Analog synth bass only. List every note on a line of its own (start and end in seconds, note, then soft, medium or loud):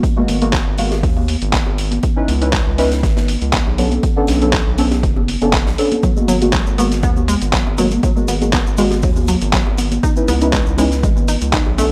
0.28 0.61 G#1 loud
0.67 1.05 G#1 loud
1.03 1.36 D#2 medium
1.42 1.60 G#1 medium
1.67 1.99 G#1 medium
2.28 2.61 C#2 loud
2.67 3.05 C#2 loud
3.03 3.36 G#1 medium
3.42 3.60 C#2 medium
3.67 3.99 B1 medium
4.28 4.61 B1 loud
4.67 5.05 B1 loud
5.03 5.36 F#1 medium
5.42 5.68 F#1 medium
5.67 5.75 B1 medium
6.28 6.61 G#1 medium
6.67 7.05 G#1 loud
7.03 7.36 D#2 medium
7.42 7.60 G#1 medium
7.67 7.99 G#1 medium
8.28 8.61 G#1 loud
8.67 9.05 G#1 loud
9.03 9.36 D#2 loud
9.42 9.60 G#1 medium
9.67 9.99 G#1 medium
10.28 10.61 C#2 loud
10.67 11.05 C#2 loud
11.03 11.36 G#1 medium
11.42 11.60 C#2 medium
11.67 11.92 B1 medium